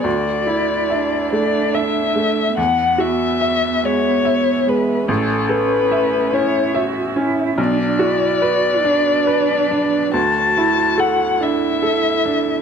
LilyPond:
<<
  \new Staff \with { instrumentName = "Violin" } { \time 6/8 \key d \lydian \tempo 4. = 48 d''4. d''8 e''4 | fis''8 e''4 cis''4 b'8 | a'8 b'4 cis''8 r4 | d''2. |
a''4 fis''8 e''4. | }
  \new Staff \with { instrumentName = "Cello" } { \time 6/8 \key d \lydian fis'8 e'8 d'2 | b2. | cis'4. e'8 fis'8 e'8 | d'8 e'8 fis'8 d'4. |
fis'4. e'4. | }
  \new Staff \with { instrumentName = "Upright piano" } { \time 6/8 \key d \lydian d,8 e'8 e''8 a8 e''8 a8 | e,8 fis'8 e''8 gis8 e''8 gis8 | a,,8 a'8 e''8 cis'8 e''8 cis'8 | b,,8 fis'8 b'8 d'8 b'8 d'8 |
d,8 e'8 a'8 d'8 a'8 d'8 | }
>>